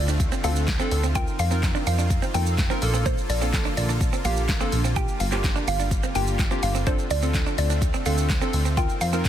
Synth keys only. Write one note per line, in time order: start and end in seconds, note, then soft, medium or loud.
0.00 0.11 C4 medium
0.00 0.11 D4 medium
0.00 0.11 F4 medium
0.00 0.12 A4 medium
0.44 0.66 C4 medium
0.44 0.66 D4 medium
0.44 0.66 F4 medium
0.44 0.66 A4 medium
0.80 1.01 C4 medium
0.80 1.01 D4 medium
0.80 1.01 F4 medium
0.80 1.02 A4 loud
1.15 1.37 C4 medium
1.15 1.37 D#4 medium
1.15 1.37 F4 medium
1.15 1.37 A#4 medium
1.51 2.02 C4 medium
1.51 2.02 D#4 medium
1.51 2.02 F4 medium
1.51 2.02 A#4 medium
2.34 2.56 C4 medium
2.34 2.56 D#4 medium
2.34 2.56 F4 medium
2.34 2.56 A4 medium
2.70 2.82 C4 medium
2.70 2.82 D#4 medium
2.70 2.81 F4 medium
2.70 2.82 A#4 loud
2.82 3.30 A#3 loud
2.82 3.30 D4 medium
2.82 3.30 F4 medium
2.82 3.30 A4 loud
3.41 3.92 A#3 medium
3.41 3.92 D4 medium
3.41 3.92 F4 medium
3.41 3.92 A4 medium
4.25 4.47 A#3 medium
4.25 4.47 D4 medium
4.25 4.47 F4 medium
4.25 4.47 G4 medium
4.60 4.82 A#3 loud
4.60 4.82 D4 medium
4.60 4.82 F4 medium
4.60 4.82 A4 loud
4.96 5.18 A#3 medium
4.96 5.18 D4 medium
4.96 5.18 F4 medium
4.96 5.18 G4 medium
5.32 5.83 A#3 medium
5.32 5.83 D4 medium
5.32 5.83 F4 medium
5.32 5.83 G4 medium
6.15 6.37 A#3 medium
6.15 6.37 D4 medium
6.15 6.37 F4 medium
6.15 6.37 G4 medium
6.51 6.73 A#3 medium
6.51 6.73 D4 medium
6.51 6.73 F4 medium
6.51 6.73 G4 medium
6.87 7.08 C4 medium
6.87 7.08 D4 medium
6.87 7.09 F4 medium
6.87 7.09 A4 medium
7.22 7.73 C4 medium
7.22 7.73 D4 medium
7.22 7.73 F4 medium
7.22 7.73 A4 medium
8.06 8.27 C4 medium
8.06 8.28 D4 medium
8.06 8.28 F4 medium
8.06 8.28 A4 medium
8.41 8.63 C4 medium
8.41 8.63 D4 medium
8.41 8.63 F4 medium
8.41 8.63 A4 loud
8.77 8.99 C4 medium
8.77 8.99 D#4 medium
8.77 8.99 F4 medium
8.77 8.99 A#4 medium
9.13 9.29 C4 medium
9.13 9.29 D#4 medium
9.13 9.29 F4 medium
9.13 9.29 A#4 medium